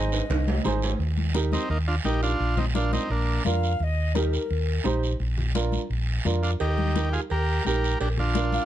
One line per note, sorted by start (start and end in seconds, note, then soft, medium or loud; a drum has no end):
0.00 0.19 G#1 medium
0.00 0.19 D#4 medium
0.00 0.19 G#4 medium
0.00 0.20 C5 medium
0.00 0.65 D#5 medium
0.12 high timbale medium
0.12 short guiro medium
0.30 0.58 C2 loud
0.30 cowbell medium
0.30 high conga soft
0.30 low conga medium
0.30 high timbale medium
0.30 long guiro medium
0.48 high conga medium
0.48 low timbale loud
0.65 0.93 G#1 medium
0.65 0.89 D#4 medium
0.65 0.90 G#4 medium
0.65 0.90 C5 loud
0.65 cowbell medium
0.65 high conga medium
0.65 low conga medium
0.65 short guiro medium
0.82 low timbale medium
0.82 short guiro medium
0.99 1.56 D#2 medium
0.99 high conga soft
0.99 long guiro medium
1.17 high conga medium
1.34 1.59 D#4 medium
1.34 1.59 G4 medium
1.34 1.60 A#4 medium
1.34 high conga medium
1.34 short guiro medium
1.52 1.69 C4 medium
1.52 1.69 D#4 medium
1.52 high conga medium
1.52 short guiro medium
1.69 1.98 D#2 medium
1.69 1.78 A#3 medium
1.69 1.78 D#4 medium
1.69 high conga soft
1.69 long guiro medium
1.88 1.96 D4 medium
1.88 1.95 F4 medium
2.04 2.33 A#1 medium
2.04 2.29 D#4 medium
2.04 2.21 D#4 medium
2.04 2.29 G4 medium
2.04 2.21 G4 medium
2.04 2.30 A#4 medium
2.04 high conga medium
2.04 short guiro medium
2.23 2.55 D4 medium
2.23 2.59 F4 loud
2.23 short guiro medium
2.40 2.96 A#1 medium
2.40 high conga soft
2.40 long guiro medium
2.57 2.66 C4 medium
2.57 2.66 D#4 medium
2.57 high conga medium
2.57 low conga medium
2.74 2.99 D4 medium
2.74 2.92 D4 medium
2.74 2.99 F4 medium
2.74 2.92 F4 medium
2.74 3.00 A#4 medium
2.74 high conga loud
2.74 short guiro medium
2.93 3.09 C4 medium
2.93 3.11 D#4 medium
2.93 high conga medium
2.93 short guiro medium
3.10 3.38 A#1 medium
3.10 3.43 A#3 medium
3.10 3.43 D4 medium
3.10 high conga soft
3.10 long guiro medium
3.45 3.74 F2 medium
3.45 3.70 D4 medium
3.45 3.70 F4 medium
3.45 3.70 A#4 medium
3.45 3.80 F5 loud
3.45 high conga medium
3.45 low conga medium
3.45 short guiro medium
3.63 short guiro medium
3.80 4.36 D#2 medium
3.80 4.17 D#5 loud
3.80 3.85 F5 medium
3.80 high conga soft
3.80 long guiro medium
4.15 4.40 D#4 medium
4.15 4.40 G4 medium
4.15 4.85 A#4 medium
4.15 4.40 A#4 medium
4.15 high conga medium
4.15 short guiro medium
4.33 short guiro medium
4.50 4.78 D#2 medium
4.50 high conga soft
4.50 long guiro medium
4.84 5.13 A#1 medium
4.84 5.09 D#4 medium
4.84 5.10 G4 medium
4.84 5.10 C5 medium
4.84 high conga medium
4.84 short guiro medium
5.03 short guiro medium
5.20 5.76 A#1 medium
5.20 high conga soft
5.20 long guiro medium
5.37 low conga medium
5.55 5.80 D4 medium
5.55 5.80 F4 medium
5.55 5.80 A#4 medium
5.55 high conga medium
5.55 short guiro medium
5.72 high conga medium
5.72 short guiro medium
5.90 6.18 A#1 medium
5.90 high conga soft
5.90 long guiro medium
6.25 6.53 F2 medium
6.25 6.50 D4 medium
6.25 6.50 F4 medium
6.25 6.50 A#4 medium
6.25 high conga medium
6.25 low conga medium
6.25 short guiro medium
6.43 6.51 D4 medium
6.43 6.51 F4 medium
6.43 short guiro medium
6.60 7.17 D#2 medium
6.60 7.09 D#4 medium
6.60 7.15 G4 medium
6.60 cowbell loud
6.60 high conga soft
6.60 long guiro medium
6.78 high conga medium
6.95 7.20 D#4 medium
6.95 7.20 G4 medium
6.95 7.20 A#4 medium
6.95 high conga medium
6.95 short guiro medium
7.13 7.21 F4 medium
7.13 7.21 G#4 medium
7.13 short guiro medium
7.30 7.59 D#2 medium
7.30 7.63 G4 medium
7.30 7.66 A#4 loud
7.30 cowbell medium
7.30 high conga soft
7.30 long guiro medium
7.65 7.94 A#1 medium
7.65 7.90 D#4 medium
7.65 7.98 G4 medium
7.65 7.91 G4 medium
7.65 7.99 A#4 medium
7.65 7.91 A#4 medium
7.65 high conga medium
7.65 short guiro medium
7.84 short guiro medium
8.00 8.57 A#1 medium
8.00 8.09 D4 medium
8.00 8.09 G4 medium
8.00 cowbell loud
8.00 high conga soft
8.00 long guiro medium
8.17 8.65 D4 medium
8.17 8.65 F4 medium
8.17 low conga medium
8.35 8.60 D4 medium
8.35 8.60 F4 medium
8.35 8.60 A#4 medium
8.35 high conga medium
8.35 short guiro medium
8.52 8.65 F5 loud
8.52 high conga medium
8.52 short guiro medium